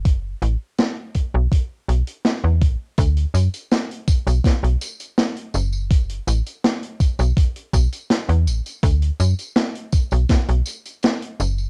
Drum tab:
HH |x-x-x-x-x-xxx-x-|xxxxxxxxxxxxxxx-|xxxxxxxxxxxxxxxx|xxxxxxxxxxxxxxx-|
TB |----------------|x-xxx-xxx-xxx-xx|x-xxx-xxx-xxx-xx|x-xxx-xxx-xxx-xx|
SD |----o-------o---|----o---o---o---|----o-------o---|----o---o---o---|
BD |o-----o-o-----o-|o-----o-o-------|o-----o-o-o-----|o-----o-o-------|